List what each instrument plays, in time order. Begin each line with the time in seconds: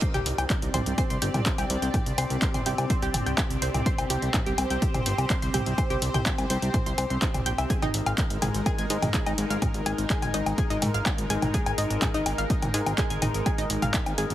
0.02 analog synth pad C4 G4 D5, synth arpeggio sound C5 C6, kick, closed hi-hat
0.14 analog synth bass C2, synth arpeggio sound G4 G5, closed hi-hat, mid tom, low woodblock
0.26 analog synth bass C2, open hi-hat
0.38 analog synth bass C2, synth arpeggio sound G5 G6, closed hi-hat, low woodblock
0.50 kick, clap, closed hi-hat
0.62 analog synth bass C2, closed hi-hat
0.74 analog synth bass C2, synth arpeggio sound C5 C6, mid tom, open hi-hat, low woodblock
0.86 analog synth bass C2, closed hi-hat
0.98 synth arpeggio sound C5 C6, kick, closed hi-hat, low woodblock
1.10 analog synth bass C2, synth arpeggio sound C6, closed hi-hat
1.22 analog synth bass G1, synth arpeggio sound G4 G5, open hi-hat
1.34 analog synth bass C2, closed hi-hat, mid tom, low woodblock
1.46 synth arpeggio sound C5 C6, kick, clap, closed hi-hat
1.58 analog synth bass C2, synth arpeggio sound G4 G5, closed hi-hat, low woodblock
1.70 analog synth bass C2, open hi-hat
1.82 analog synth bass C2, synth arpeggio sound G5 G6, closed hi-hat
1.94 kick, closed hi-hat, mid tom, low woodblock
2.06 analog synth bass C2, closed hi-hat
2.18 analog synth bass C2, synth arpeggio sound C5 C6, open hi-hat, low woodblock
2.30 analog synth bass C2, closed hi-hat
2.42 synth arpeggio sound C5 C6, kick, clap, closed hi-hat
2.54 analog synth bass C2, synth arpeggio sound C6, closed hi-hat, mid tom, low woodblock
2.66 analog synth bass C2, synth arpeggio sound G4 G5, open hi-hat
2.78 analog synth bass C2, closed hi-hat, low woodblock
2.90 synth arpeggio sound C5 C6, kick, closed hi-hat
3.02 analog synth bass C2, synth arpeggio sound G4 G5, closed hi-hat
3.14 analog synth bass G1, mid tom, open hi-hat, low woodblock
3.26 analog synth bass C2, synth arpeggio sound G5 G6, closed hi-hat
3.38 kick, clap, closed hi-hat, low woodblock
3.50 analog synth bass C2, closed hi-hat
3.62 analog synth bass C2, synth arpeggio sound C5 C6, open hi-hat
3.74 analog synth bass C2, closed hi-hat, mid tom, low woodblock
3.86 synth arpeggio sound C5 C6, analog synth pad C5, kick, closed hi-hat
3.98 analog synth bass C2, synth arpeggio sound C6, closed hi-hat, low woodblock
4.10 analog synth bass C2, synth arpeggio sound G4 G5, open hi-hat
4.22 analog synth bass C2, closed hi-hat
4.34 synth arpeggio sound C5 C6, kick, clap, closed hi-hat, mid tom, low woodblock
4.46 analog synth bass C2, synth arpeggio sound G4 G5, closed hi-hat
4.58 analog synth bass C2, open hi-hat, low woodblock
4.70 analog synth bass C2, synth arpeggio sound G5 G6, closed hi-hat
4.82 kick, closed hi-hat
4.94 analog synth bass C2, closed hi-hat, mid tom, low woodblock
5.06 analog synth bass G1, synth arpeggio sound C5 C6, open hi-hat
5.18 analog synth bass C2, closed hi-hat, low woodblock
5.30 synth arpeggio sound C5 C6, kick, clap, closed hi-hat
5.42 analog synth bass C2, synth arpeggio sound C6, closed hi-hat
5.54 analog synth bass C2, synth arpeggio sound G4 G5, mid tom, open hi-hat, low woodblock
5.66 analog synth bass C2, closed hi-hat
5.78 synth arpeggio sound C5 C6, kick, closed hi-hat, low woodblock
5.90 analog synth bass C2, synth arpeggio sound G4 G5, closed hi-hat
6.02 analog synth bass C2, open hi-hat
6.14 analog synth bass C2, synth arpeggio sound G5 G6, closed hi-hat, mid tom, low woodblock
6.26 kick, clap, closed hi-hat
6.38 analog synth bass C2, closed hi-hat, low woodblock
6.50 analog synth bass C2, synth arpeggio sound C5 C6, open hi-hat
6.62 analog synth bass C2, closed hi-hat
6.74 synth arpeggio sound C5 C6, kick, closed hi-hat, mid tom, low woodblock
6.86 analog synth bass C2, synth arpeggio sound C6, closed hi-hat
6.98 analog synth bass C2, synth arpeggio sound C5 C6, open hi-hat, low woodblock
7.10 analog synth bass C2, synth arpeggio sound C6, closed hi-hat
7.22 synth arpeggio sound C5 C6, kick, clap, closed hi-hat
7.34 analog synth bass C2, closed hi-hat, mid tom, low woodblock
7.46 analog synth bass A#1, synth arpeggio sound G5 G6, open hi-hat
7.58 analog synth bass C2, synth arpeggio sound E5 E6, closed hi-hat, low woodblock
7.70 analog synth pad G#3 D#4 A#4, synth arpeggio sound G#4 G#5, kick, closed hi-hat
7.82 analog synth bass G#1, synth arpeggio sound D#4 D#5, closed hi-hat, mid tom, low woodblock
7.94 analog synth bass G#1, open hi-hat
8.06 analog synth bass G#1, synth arpeggio sound F5 F6, closed hi-hat, low woodblock
8.18 kick, clap, closed hi-hat
8.30 analog synth bass G#1, closed hi-hat
8.42 analog synth bass G#1, synth arpeggio sound G#4 G#5, mid tom, open hi-hat, low woodblock
8.54 analog synth bass G#1, closed hi-hat
8.66 synth arpeggio sound G#4 G#5, kick, closed hi-hat, low woodblock
8.78 analog synth bass G#1, synth arpeggio sound G#5 G#6, closed hi-hat
8.90 analog synth bass G#2, synth arpeggio sound D#4 D#5, open hi-hat
9.02 analog synth bass G#1, closed hi-hat, mid tom, low woodblock
9.14 synth arpeggio sound G#4 G#5, kick, clap, closed hi-hat
9.26 analog synth bass G#1, synth arpeggio sound D#4 D#5, closed hi-hat, low woodblock
9.38 analog synth bass G#1, open hi-hat
9.50 analog synth bass G#1, synth arpeggio sound F5 F6, closed hi-hat
9.62 kick, closed hi-hat, mid tom, low woodblock
9.74 analog synth bass G#1, closed hi-hat
9.86 analog synth bass G#1, synth arpeggio sound G#4 G#5, open hi-hat, low woodblock
9.98 analog synth bass G#1, closed hi-hat
10.10 synth arpeggio sound G#4 G#5, kick, clap, closed hi-hat
10.22 analog synth bass G#1, synth arpeggio sound G#5 G#6, closed hi-hat, mid tom, low woodblock
10.34 analog synth bass G#1, synth arpeggio sound D#4 D#5, open hi-hat
10.46 analog synth bass G#1, closed hi-hat, low woodblock
10.58 synth arpeggio sound G#4 G#5, kick, closed hi-hat
10.70 analog synth bass G#1, synth arpeggio sound D#4 D#5, closed hi-hat
10.82 analog synth bass G#2, mid tom, open hi-hat, low woodblock
10.94 analog synth bass G#1, synth arpeggio sound F5 F6, closed hi-hat
11.06 kick, clap, closed hi-hat, low woodblock
11.18 analog synth bass G#1, closed hi-hat
11.30 analog synth bass G#1, synth arpeggio sound G#4 G#5, open hi-hat
11.42 analog synth bass G#1, closed hi-hat, mid tom, low woodblock
11.54 synth arpeggio sound G#4 G#5, kick, closed hi-hat
11.66 analog synth bass G#1, synth arpeggio sound G#5 G#6, closed hi-hat, low woodblock
11.78 analog synth bass G#1, synth arpeggio sound D#4 D#5, open hi-hat
11.90 analog synth bass G#1, closed hi-hat
12.02 synth arpeggio sound G#4 G#5, kick, clap, closed hi-hat, mid tom, low woodblock
12.14 analog synth bass G#1, synth arpeggio sound D#4 D#5, closed hi-hat
12.26 analog synth bass G#1, open hi-hat, low woodblock
12.38 analog synth bass G#1, synth arpeggio sound F5 F6, closed hi-hat
12.50 kick, closed hi-hat
12.62 analog synth bass G#1, closed hi-hat, mid tom, low woodblock
12.74 analog synth bass G#2, synth arpeggio sound G#4 G#5, open hi-hat
12.86 analog synth bass G#1, closed hi-hat, low woodblock
12.98 synth arpeggio sound G#4 G#5, kick, clap, closed hi-hat
13.10 analog synth bass G#1, synth arpeggio sound G#5 G#6, closed hi-hat
13.22 analog synth bass G#1, synth arpeggio sound D#4 D#5, mid tom, open hi-hat, low woodblock
13.34 analog synth bass G#1, closed hi-hat
13.46 synth arpeggio sound G#4 G#5, kick, closed hi-hat, low woodblock
13.58 analog synth bass G#1, synth arpeggio sound D#4 D#5, closed hi-hat
13.70 analog synth bass G#1, open hi-hat
13.82 analog synth bass G#1, synth arpeggio sound F5 F6, closed hi-hat, mid tom, low woodblock
13.94 kick, clap, closed hi-hat
14.06 analog synth bass G#1, closed hi-hat, low woodblock
14.18 analog synth bass G#1, synth arpeggio sound G#4 G#5, open hi-hat
14.30 analog synth bass G#1, closed hi-hat